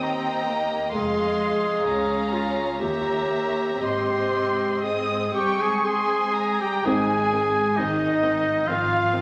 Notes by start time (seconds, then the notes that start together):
Already playing: D#2
0.00 C4 D#5 G5 A#5
0.48 A#3
0.93 F1 F2 G#3 G#4 D#5 F5 C6
1.85 C#2 C#4 C#5 F5 A#5
2.33 F4
2.80 D#2 A#3 G4 C#5 E5 A#5
3.80 G#1 G#2 C4 G4 D#5 C6
4.83 G#4 D#5 D#6
5.33 G3 G4 G5 C#6
5.58 G#3 G#4 G#5
5.84 G#3 G#4 G#5 C6
6.36 A#5
6.60 G3 G4 G5
6.84 G#1 D#3 G#3 C4 D#4 G#4 G#5
7.33 D#3 C4
7.76 G#1 D#3 C4 D#4 D#5
8.22 D#3 C4
8.66 G#1 D#3 F3 C4 F4 F5
9.13 D#3 C4